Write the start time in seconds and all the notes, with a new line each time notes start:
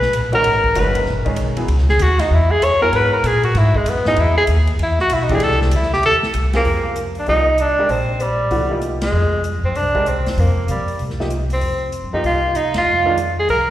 Already playing: B1 B4
0.02 snare
0.13 A#1, hi-hat pedal, ride
0.32 D#3 G#3 C#4 F#4 A#4, ride
0.44 G#1, ride
0.64 kick
0.75 F#1 D#3 G#3 C#4 F#4 B4, hi-hat pedal, ride
0.95 ride
1.06 A#1, snare
1.25 D#3 G#3 C#4 G#4, kick, ride
1.36 B1, hi-hat pedal, ride
1.57 F#3 B3 E4 G#4, ride
1.68 C#2, ride
1.78 snare
1.89 G#4, snare
1.99 D#2 F#4, hi-hat pedal, ride
2.19 D#4, snare, ride
2.31 E2 E4
2.51 G#4
2.62 F#2 C#5, hi-hat pedal, ride
2.81 F#3 B3 E4 G#4 A#4
2.92 G#2 B4, ride
3.13 A#4
3.23 A#2 G#4, hi-hat pedal, ride
3.43 F#4, ride
3.55 G#2 E4, snare, ride
3.74 G#3, kick
3.86 F#2 B3, hi-hat pedal, ride
4.05 F#3 B3 D#4 E4 G#4, snare
4.16 E2 E4, ride
4.37 G#4
4.47 D#2, hi-hat pedal, ride
4.67 ride
4.79 E2, ride
4.83 E4
4.99 F#4, snare
5.10 B1 E4, hi-hat pedal, ride
5.23 D#4
5.29 E3 A3 D4 G4, kick, ride
5.34 G#4
5.40 C2 A4, ride
5.51 snare
5.61 C4, snare
5.71 D2, hi-hat pedal, ride
5.76 E4
5.83 snare
5.93 G4, snare
6.03 E2 A4, ride
6.23 muted upright bass stroke, snare
6.34 C2, hi-hat pedal, ride
6.53 A#3 C4 F4 G4 G#4, snare, ride
6.65 F2, open hi-hat
6.96 closed hi-hat
7.15 open hi-hat
7.19 D4
7.26 C2 F3 A#3 D#4 G4, open hi-hat
7.58 D4, closed hi-hat
7.78 G#3 D4 G4 A#4
7.89 A#1 C4, open hi-hat
8.20 G3, closed hi-hat
8.51 C2 E3 A3 D4 F#4, open hi-hat
8.70 F3 A#3 D#4 G4
8.82 closed hi-hat
9.01 G#3, snare, ride
9.12 F2
9.44 closed hi-hat
9.63 F#2 C4
9.75 C2 D4, open hi-hat
9.95 G#3 D4 G4 A#4, kick
10.06 C4, closed hi-hat
10.26 D#2, snare, open hi-hat
10.37 F2 A#3, open hi-hat
10.68 C3 G3, closed hi-hat
10.88 open hi-hat
10.99 C2, open hi-hat
11.10 snare
11.20 F3 A#3 D#4 G4, snare
11.30 closed hi-hat
11.50 C4, open hi-hat
11.61 F2, open hi-hat
11.92 closed hi-hat
12.03 G2
12.13 F#2 F3 A#3 D#4 G4
12.23 C2 F4, open hi-hat
12.55 D#4, closed hi-hat
12.74 D#2 F4, snare, ride
12.85 F2
13.06 D#3 G#3 D4 F4
13.18 closed hi-hat
13.39 G#4
13.49 C2 A#4, open hi-hat